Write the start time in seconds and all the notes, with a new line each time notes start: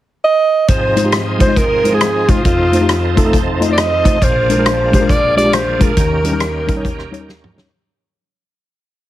0.24 D#5
0.68 G#2 F3 C4 D#4 G#4 C5, kick, closed hi-hat
0.96 G#3 D#4 F4 C5, closed hi-hat
1.03 G#3 D#4 F4 G4
1.12 cross-stick, closed hi-hat
1.39 G#3 D#4 F4 C5, kick, cross-stick, closed hi-hat
1.47 G#3 D#4 F4 D#5
1.56 A#4, kick, closed hi-hat
1.84 G#3 D#4 F4 C5, closed hi-hat
1.92 G#3 D#4 F4 G#4 C5
2.01 cross-stick, closed hi-hat
2.28 G#3 D#4 F4 C5, kick, closed hi-hat
2.44 F2 F3 F4 A4, kick, closed hi-hat
2.72 A3 D#4 F4 C5, closed hi-hat
2.80 A3 D#4 F4 G4
2.89 cross-stick, closed hi-hat
3.16 A3 D#4 F4 A4, kick, closed hi-hat
3.25 A3 D#4 F4 A4
3.33 kick, closed hi-hat
3.60 A3 D#4 F4 D#5, closed hi-hat
3.68 A3 D#4 F4 D#5
3.72 D5
3.77 D#5, cross-stick, closed hi-hat
4.04 A3 D#4 F4 C5, kick, closed hi-hat
4.21 A#1 A#2 F3 A#3 D4 G#4 C5, kick, closed hi-hat
4.49 G#3 D4 F4 A#4, closed hi-hat
4.57 G#3 D4 F4 A#4
4.66 cross-stick, closed hi-hat
4.92 G#3 D4 F4 G4 C5, kick, closed hi-hat
5.00 G#3 D4 F4 A#4
5.09 D5, kick, closed hi-hat
5.36 G#3 D4 F4 G4 D5, closed hi-hat
5.44 G#3 D4 F4 G4
5.53 C5, cross-stick, closed hi-hat
5.79 G#3 D4 F4 G#4 A#4, kick, closed hi-hat
5.97 D#2 D#3 C#4 G4, kick, closed hi-hat
6.24 G3 C#4 D#4 A#4, closed hi-hat
6.31 G3 C#4 D#4 A#4
6.40 cross-stick, closed hi-hat
6.67 G3 C#4 D#4 A#4, kick, cross-stick, closed hi-hat
6.75 G3 C#4 D#4 C#5
6.85 kick, closed hi-hat
6.99 cross-stick
7.11 G3 C#4 D#4 C#5, closed hi-hat
7.19 G3 C#4 D#4 A#4
7.29 snare
7.44 mid tom
7.56 G3 C#4 D#4 C#5, snare